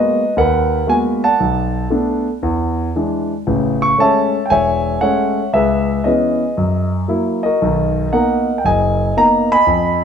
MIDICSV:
0, 0, Header, 1, 2, 480
1, 0, Start_track
1, 0, Tempo, 518135
1, 1287, Time_signature, 4, 2, 24, 8
1, 9301, End_track
2, 0, Start_track
2, 0, Title_t, "Grand piano"
2, 0, Program_c, 0, 0
2, 0, Note_on_c, 0, 56, 50
2, 0, Note_on_c, 0, 58, 46
2, 0, Note_on_c, 0, 59, 43
2, 0, Note_on_c, 0, 63, 50
2, 0, Note_on_c, 0, 66, 52
2, 0, Note_on_c, 0, 71, 56
2, 0, Note_on_c, 0, 75, 78
2, 144, Note_off_c, 0, 63, 0
2, 187, Note_off_c, 0, 56, 0
2, 187, Note_off_c, 0, 58, 0
2, 187, Note_off_c, 0, 59, 0
2, 191, Note_off_c, 0, 66, 0
2, 309, Note_off_c, 0, 75, 0
2, 338, Note_off_c, 0, 71, 0
2, 339, Note_on_c, 0, 39, 62
2, 350, Note_on_c, 0, 70, 65
2, 352, Note_on_c, 0, 71, 63
2, 352, Note_on_c, 0, 78, 88
2, 750, Note_off_c, 0, 39, 0
2, 787, Note_off_c, 0, 78, 0
2, 807, Note_on_c, 0, 56, 48
2, 808, Note_on_c, 0, 58, 43
2, 815, Note_on_c, 0, 66, 58
2, 819, Note_on_c, 0, 59, 46
2, 829, Note_on_c, 0, 80, 94
2, 899, Note_off_c, 0, 80, 0
2, 1144, Note_off_c, 0, 56, 0
2, 1145, Note_off_c, 0, 58, 0
2, 1148, Note_off_c, 0, 66, 0
2, 1148, Note_on_c, 0, 81, 89
2, 1149, Note_on_c, 0, 78, 64
2, 1150, Note_off_c, 0, 59, 0
2, 1154, Note_on_c, 0, 74, 63
2, 1262, Note_off_c, 0, 70, 0
2, 1263, Note_off_c, 0, 71, 0
2, 1298, Note_on_c, 0, 35, 65
2, 1710, Note_off_c, 0, 35, 0
2, 1740, Note_off_c, 0, 81, 0
2, 1764, Note_on_c, 0, 57, 50
2, 1766, Note_on_c, 0, 59, 44
2, 1772, Note_on_c, 0, 62, 56
2, 2062, Note_off_c, 0, 78, 0
2, 2064, Note_off_c, 0, 74, 0
2, 2102, Note_off_c, 0, 57, 0
2, 2104, Note_off_c, 0, 59, 0
2, 2107, Note_off_c, 0, 62, 0
2, 2248, Note_on_c, 0, 40, 65
2, 2665, Note_off_c, 0, 40, 0
2, 2739, Note_on_c, 0, 52, 51
2, 2746, Note_on_c, 0, 56, 48
2, 2746, Note_on_c, 0, 62, 55
2, 3070, Note_off_c, 0, 52, 0
2, 3074, Note_off_c, 0, 56, 0
2, 3074, Note_off_c, 0, 62, 0
2, 3213, Note_on_c, 0, 49, 65
2, 3214, Note_on_c, 0, 33, 66
2, 3540, Note_on_c, 0, 85, 90
2, 3627, Note_off_c, 0, 49, 0
2, 3628, Note_off_c, 0, 33, 0
2, 3690, Note_on_c, 0, 56, 50
2, 3693, Note_on_c, 0, 61, 55
2, 3696, Note_on_c, 0, 57, 46
2, 3698, Note_off_c, 0, 85, 0
2, 3708, Note_on_c, 0, 81, 92
2, 3718, Note_on_c, 0, 76, 62
2, 3721, Note_on_c, 0, 73, 62
2, 4026, Note_off_c, 0, 56, 0
2, 4027, Note_off_c, 0, 61, 0
2, 4029, Note_off_c, 0, 57, 0
2, 4105, Note_off_c, 0, 81, 0
2, 4128, Note_on_c, 0, 79, 68
2, 4169, Note_off_c, 0, 79, 0
2, 4171, Note_off_c, 0, 73, 0
2, 4171, Note_off_c, 0, 76, 0
2, 4171, Note_on_c, 0, 80, 96
2, 4173, Note_on_c, 0, 28, 66
2, 4185, Note_on_c, 0, 73, 66
2, 4185, Note_on_c, 0, 76, 65
2, 4588, Note_off_c, 0, 28, 0
2, 4616, Note_off_c, 0, 80, 0
2, 4642, Note_on_c, 0, 78, 86
2, 4646, Note_off_c, 0, 73, 0
2, 4649, Note_on_c, 0, 57, 45
2, 4651, Note_on_c, 0, 56, 50
2, 4656, Note_on_c, 0, 61, 54
2, 4660, Note_on_c, 0, 73, 66
2, 4986, Note_off_c, 0, 56, 0
2, 4986, Note_off_c, 0, 57, 0
2, 4989, Note_off_c, 0, 61, 0
2, 5091, Note_off_c, 0, 78, 0
2, 5099, Note_off_c, 0, 76, 0
2, 5101, Note_off_c, 0, 73, 0
2, 5123, Note_on_c, 0, 37, 65
2, 5129, Note_on_c, 0, 76, 80
2, 5145, Note_on_c, 0, 71, 59
2, 5149, Note_on_c, 0, 68, 61
2, 5542, Note_off_c, 0, 37, 0
2, 5597, Note_on_c, 0, 75, 68
2, 5603, Note_on_c, 0, 52, 51
2, 5608, Note_off_c, 0, 71, 0
2, 5611, Note_off_c, 0, 68, 0
2, 5613, Note_on_c, 0, 61, 57
2, 5614, Note_on_c, 0, 59, 46
2, 5622, Note_on_c, 0, 71, 47
2, 5623, Note_off_c, 0, 76, 0
2, 5625, Note_on_c, 0, 68, 47
2, 5943, Note_off_c, 0, 52, 0
2, 5947, Note_off_c, 0, 61, 0
2, 5948, Note_off_c, 0, 59, 0
2, 6062, Note_off_c, 0, 71, 0
2, 6090, Note_on_c, 0, 42, 64
2, 6367, Note_off_c, 0, 75, 0
2, 6380, Note_off_c, 0, 68, 0
2, 6506, Note_off_c, 0, 42, 0
2, 6558, Note_on_c, 0, 54, 48
2, 6564, Note_on_c, 0, 58, 44
2, 6568, Note_on_c, 0, 64, 54
2, 6884, Note_on_c, 0, 75, 71
2, 6900, Note_off_c, 0, 54, 0
2, 6903, Note_off_c, 0, 58, 0
2, 6903, Note_on_c, 0, 70, 52
2, 6905, Note_off_c, 0, 64, 0
2, 6906, Note_on_c, 0, 66, 53
2, 7056, Note_on_c, 0, 35, 65
2, 7059, Note_on_c, 0, 51, 61
2, 7469, Note_off_c, 0, 35, 0
2, 7471, Note_off_c, 0, 51, 0
2, 7524, Note_on_c, 0, 58, 50
2, 7525, Note_off_c, 0, 70, 0
2, 7528, Note_on_c, 0, 78, 79
2, 7530, Note_off_c, 0, 75, 0
2, 7530, Note_on_c, 0, 59, 44
2, 7533, Note_on_c, 0, 63, 54
2, 7539, Note_on_c, 0, 70, 56
2, 7543, Note_on_c, 0, 75, 56
2, 7820, Note_off_c, 0, 66, 0
2, 7863, Note_off_c, 0, 58, 0
2, 7866, Note_off_c, 0, 59, 0
2, 7867, Note_off_c, 0, 63, 0
2, 7950, Note_on_c, 0, 79, 64
2, 7978, Note_off_c, 0, 78, 0
2, 8000, Note_off_c, 0, 79, 0
2, 8008, Note_on_c, 0, 30, 64
2, 8009, Note_off_c, 0, 75, 0
2, 8019, Note_on_c, 0, 80, 91
2, 8023, Note_on_c, 0, 75, 65
2, 8425, Note_off_c, 0, 30, 0
2, 8456, Note_off_c, 0, 70, 0
2, 8493, Note_on_c, 0, 58, 51
2, 8495, Note_on_c, 0, 59, 45
2, 8499, Note_on_c, 0, 63, 55
2, 8502, Note_on_c, 0, 82, 99
2, 8507, Note_off_c, 0, 80, 0
2, 8794, Note_off_c, 0, 82, 0
2, 8812, Note_off_c, 0, 75, 0
2, 8818, Note_on_c, 0, 83, 104
2, 8825, Note_on_c, 0, 80, 64
2, 8826, Note_on_c, 0, 75, 68
2, 8827, Note_off_c, 0, 58, 0
2, 8828, Note_off_c, 0, 59, 0
2, 8830, Note_off_c, 0, 63, 0
2, 8956, Note_on_c, 0, 41, 65
2, 9301, Note_off_c, 0, 41, 0
2, 9301, Note_off_c, 0, 75, 0
2, 9301, Note_off_c, 0, 80, 0
2, 9301, Note_off_c, 0, 83, 0
2, 9301, End_track
0, 0, End_of_file